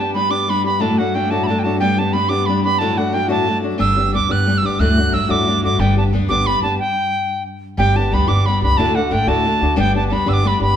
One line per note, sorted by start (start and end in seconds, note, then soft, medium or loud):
0.00 3.79 G2 medium
0.00 0.14 B3 soft
0.00 0.15 D4 soft
0.00 0.14 G4 soft
0.00 0.13 A5 medium
0.14 0.30 G3 medium
0.14 0.30 B3 medium
0.14 0.29 D4 medium
0.14 0.28 G4 medium
0.14 0.32 B5 medium
0.30 0.47 G3 soft
0.30 0.48 B3 medium
0.30 0.48 D4 medium
0.30 0.48 G4 medium
0.30 0.51 D6 medium
0.48 0.64 G3 medium
0.48 0.65 B3 medium
0.48 0.65 D4 medium
0.48 0.63 G4 medium
0.48 0.65 B5 medium
0.64 0.80 B3 soft
0.64 0.80 D4 soft
0.64 0.80 G4 soft
0.64 0.82 B5 medium
0.79 0.98 D2 medium
0.79 0.98 A2 medium
0.79 0.98 F#3 medium
0.79 0.98 A3 medium
0.79 0.99 D4 medium
0.79 0.97 F#4 medium
0.79 1.00 A5 medium
0.98 1.13 F#3 soft
0.98 1.15 A3 soft
0.98 1.14 D4 soft
0.98 1.14 F#4 medium
0.98 1.16 F#5 medium
1.14 1.30 F#3 medium
1.14 1.30 A3 medium
1.14 1.30 D4 medium
1.14 1.30 F#4 medium
1.14 1.32 G5 medium
1.31 1.50 D2 soft
1.31 1.49 A2 soft
1.31 1.47 F#3 medium
1.31 1.49 A3 medium
1.31 1.49 D4 medium
1.31 1.49 F#4 medium
1.31 1.45 A5 medium
1.44 1.61 A5 medium
1.44 1.48 B5 medium
1.48 1.64 F#3 medium
1.48 1.64 A3 medium
1.48 1.65 D4 medium
1.48 1.63 F#4 medium
1.59 1.65 G5 soft
1.63 1.80 F#3 soft
1.63 1.81 A3 soft
1.63 1.80 D4 soft
1.63 1.80 F#4 soft
1.63 1.79 A5 medium
1.79 1.98 G3 medium
1.79 1.99 B3 medium
1.79 1.98 D4 medium
1.79 1.97 G4 medium
1.79 2.00 G5 loud
1.98 2.13 B3 soft
1.98 2.14 D4 soft
1.98 2.14 G4 medium
1.98 2.15 A5 medium
2.13 2.30 G3 medium
2.13 2.30 B3 medium
2.13 2.29 D4 medium
2.13 2.28 G4 medium
2.13 2.31 B5 medium
2.29 2.46 G3 medium
2.29 2.47 B3 medium
2.29 2.48 D4 medium
2.29 2.48 G4 medium
2.29 2.48 D6 loud
2.46 2.64 G3 medium
2.46 2.64 B3 medium
2.46 2.64 D4 medium
2.46 2.63 B5 medium
2.50 2.63 G4 medium
2.64 2.81 B3 soft
2.64 2.80 D4 soft
2.64 2.80 G4 medium
2.64 2.80 B5 loud
2.79 2.98 D2 medium
2.79 2.98 A2 medium
2.79 2.98 F#3 medium
2.79 2.97 A3 medium
2.79 2.98 D4 medium
2.79 2.96 F#4 medium
2.79 2.99 A5 medium
2.97 3.11 F#3 soft
2.97 3.13 A3 soft
2.97 3.13 D4 soft
2.97 3.13 F#4 soft
2.97 3.15 F#5 medium
3.12 3.29 F#3 medium
3.12 3.28 A3 medium
3.12 3.28 D4 medium
3.12 3.27 F#4 medium
3.12 3.30 G5 medium
3.28 3.48 D2 soft
3.28 3.48 A2 medium
3.28 3.45 F#3 medium
3.28 3.47 A3 medium
3.28 3.46 D4 medium
3.28 3.47 F#4 medium
3.28 3.58 A5 medium
3.47 3.63 F#3 medium
3.47 3.61 A3 medium
3.47 3.63 D4 medium
3.47 3.60 F#4 medium
3.62 3.77 F#3 soft
3.62 3.79 A3 soft
3.62 3.78 D4 soft
3.62 3.79 F#4 soft
3.78 4.16 G1 medium
3.78 7.82 G2 medium
3.78 3.97 G3 medium
3.78 3.97 B3 medium
3.78 3.96 D4 medium
3.78 3.95 G4 medium
3.78 4.14 E6 loud
3.96 4.13 B3 soft
3.96 4.14 D4 soft
3.96 4.13 G4 soft
4.13 4.27 D2 medium
4.13 4.29 G3 medium
4.13 4.29 B3 medium
4.13 4.28 D4 medium
4.13 4.28 G4 medium
4.13 4.33 D6 medium
4.29 4.58 G1 medium
4.29 4.45 G3 medium
4.29 4.46 B3 medium
4.29 4.47 D4 medium
4.29 4.47 G4 medium
4.29 4.59 F#6 loud
4.46 4.63 G3 medium
4.46 4.63 B3 medium
4.46 4.63 D4 medium
4.46 4.62 G4 medium
4.58 4.67 E6 medium
4.63 4.77 G1 medium
4.63 4.80 B3 soft
4.63 4.79 D4 soft
4.63 4.79 G4 medium
4.63 4.81 D6 medium
4.79 4.97 D2 medium
4.79 5.14 D2 medium
4.79 4.98 A2 medium
4.79 4.98 F#3 medium
4.79 4.97 A3 medium
4.79 4.98 D4 medium
4.79 4.96 F#4 medium
4.79 5.15 F#6 loud
4.97 5.11 F#3 soft
4.97 5.14 A3 medium
4.97 5.12 D4 soft
4.97 5.13 F#4 medium
5.12 5.27 A1 medium
5.12 5.29 F#3 medium
5.12 5.28 A3 medium
5.12 5.28 D4 medium
5.12 5.28 F#4 medium
5.12 5.32 E6 loud
5.29 5.65 D2 medium
5.29 5.48 D2 soft
5.29 5.48 A2 medium
5.29 5.46 F#3 medium
5.29 5.47 A3 medium
5.29 5.47 D4 medium
5.29 5.47 F#4 medium
5.29 5.63 D6 medium
5.47 5.63 F#3 medium
5.47 5.63 A3 medium
5.47 5.64 D4 medium
5.47 5.62 F#4 medium
5.63 5.77 G#1 medium
5.63 5.79 F#3 soft
5.63 5.80 A3 medium
5.63 5.79 D4 soft
5.63 5.79 F#4 medium
5.63 5.81 D6 loud
5.79 6.14 G1 medium
5.79 5.97 G3 medium
5.79 5.98 B3 medium
5.79 5.97 D4 medium
5.79 5.95 G4 medium
5.79 5.97 G5 medium
5.97 6.12 B3 soft
5.97 6.13 D4 soft
5.97 6.13 G4 medium
5.97 6.04 A5 medium
6.13 6.26 D2 medium
6.13 6.29 G3 medium
6.13 6.29 B3 medium
6.13 6.29 D4 medium
6.13 6.28 G4 medium
6.29 6.57 G1 loud
6.29 6.45 G3 medium
6.29 6.47 B3 medium
6.29 6.48 D4 medium
6.29 6.47 G4 medium
6.29 6.48 D6 loud
6.47 6.63 G3 medium
6.47 6.63 B3 medium
6.47 6.63 D4 medium
6.47 6.61 G4 medium
6.47 6.62 B5 medium
6.62 6.76 G1 medium
6.62 6.80 B3 soft
6.62 6.79 D4 soft
6.62 6.79 G4 soft
6.62 6.78 A5 medium
6.80 7.43 G5 medium
7.77 8.14 G1 loud
7.77 7.96 G3 medium
7.77 7.96 B3 medium
7.77 7.97 D4 medium
7.77 7.95 G4 medium
7.77 7.98 G5 medium
7.96 8.11 B3 soft
7.96 8.12 D4 soft
7.96 8.12 G4 medium
7.96 8.15 A5 medium
8.11 8.25 D2 medium
8.11 8.28 G3 medium
8.11 8.28 B3 medium
8.11 8.27 D4 medium
8.11 8.26 G4 medium
8.11 8.30 B5 medium
8.28 8.63 G1 medium
8.28 8.45 G3 medium
8.28 8.46 B3 medium
8.28 8.46 D4 medium
8.28 8.46 G4 medium
8.28 8.47 D6 medium
8.46 8.62 G3 medium
8.46 8.62 B3 medium
8.46 8.63 D4 medium
8.46 8.61 G4 medium
8.46 8.62 B5 medium
8.62 8.75 C#2 medium
8.62 8.79 B3 soft
8.62 8.78 D4 soft
8.62 8.78 G4 medium
8.62 8.79 B5 loud
8.77 8.96 D2 medium
8.77 9.12 D2 loud
8.77 8.96 A2 medium
8.77 8.96 D3 medium
8.77 8.95 A3 medium
8.77 8.96 D4 medium
8.77 8.94 F#4 medium
8.77 8.97 A5 loud
8.95 9.10 D3 soft
8.95 9.12 A3 medium
8.95 9.10 D4 soft
8.95 9.11 F#4 medium
8.95 9.14 F#5 medium
9.11 9.24 A1 medium
9.11 9.27 D3 medium
9.11 9.27 A3 medium
9.11 9.27 D4 medium
9.11 9.26 F#4 medium
9.11 9.30 G5 medium
9.27 9.55 D2 loud
9.27 9.46 D2 medium
9.27 9.46 A2 medium
9.27 9.43 D3 medium
9.27 9.45 A3 medium
9.27 9.44 D4 medium
9.27 9.45 F#4 medium
9.27 9.77 A5 loud
9.44 9.61 D3 medium
9.44 9.61 A3 medium
9.44 9.61 D4 medium
9.44 9.59 F#4 medium
9.61 9.75 D2 medium
9.61 9.76 D3 soft
9.61 9.77 A3 soft
9.61 9.76 D4 medium
9.61 9.77 F#4 soft
9.76 10.12 G1 loud
9.76 9.95 G3 medium
9.76 9.95 B3 medium
9.76 9.94 D4 medium
9.76 9.93 G4 medium
9.76 9.95 G5 loud
9.94 10.10 B3 soft
9.94 10.11 D4 soft
9.94 10.10 G4 medium
9.94 10.07 A5 medium
10.08 10.24 D2 medium
10.08 10.26 G3 medium
10.08 10.26 B3 medium
10.08 10.14 A5 soft
10.12 10.25 D4 medium
10.12 10.25 G4 medium
10.12 10.30 B5 loud
10.26 10.55 G1 loud
10.26 10.43 G3 medium
10.26 10.43 B3 medium
10.26 10.45 D4 medium
10.26 10.44 G4 medium
10.26 10.34 E6 medium
10.33 10.49 D6 loud
10.44 10.60 G3 medium
10.44 10.60 B3 medium
10.44 10.60 D4 medium
10.44 10.59 G4 medium
10.44 10.61 B5 medium
10.60 10.74 G1 medium
10.60 10.76 B3 soft
10.60 10.76 D4 soft
10.60 10.76 G4 soft
10.60 10.76 B5 medium